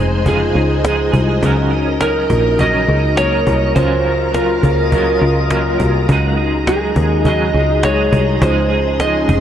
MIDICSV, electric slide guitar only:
0, 0, Header, 1, 2, 480
1, 0, Start_track
1, 0, Key_signature, -5, "major"
1, 0, Tempo, 582524
1, 1175, Time_signature, 4, 2, 24, 8
1, 7748, End_track
2, 0, Start_track
2, 0, Title_t, "Electric slide guitar"
2, 0, Program_c, 0, 29
2, 0, Note_on_c, 0, 72, 104
2, 234, Note_on_c, 0, 68, 67
2, 243, Note_off_c, 0, 72, 0
2, 912, Note_off_c, 0, 68, 0
2, 1663, Note_on_c, 0, 70, 88
2, 2147, Note_on_c, 0, 75, 97
2, 2153, Note_off_c, 0, 70, 0
2, 2612, Note_off_c, 0, 75, 0
2, 2616, Note_on_c, 0, 73, 107
2, 3093, Note_off_c, 0, 73, 0
2, 3096, Note_on_c, 0, 72, 99
2, 3576, Note_off_c, 0, 72, 0
2, 3579, Note_on_c, 0, 70, 75
2, 4504, Note_off_c, 0, 70, 0
2, 5508, Note_on_c, 0, 68, 91
2, 5987, Note_on_c, 0, 75, 92
2, 5996, Note_off_c, 0, 68, 0
2, 6465, Note_on_c, 0, 73, 94
2, 6475, Note_off_c, 0, 75, 0
2, 6907, Note_off_c, 0, 73, 0
2, 6946, Note_on_c, 0, 72, 102
2, 7422, Note_on_c, 0, 75, 100
2, 7435, Note_off_c, 0, 72, 0
2, 7748, Note_off_c, 0, 75, 0
2, 7748, End_track
0, 0, End_of_file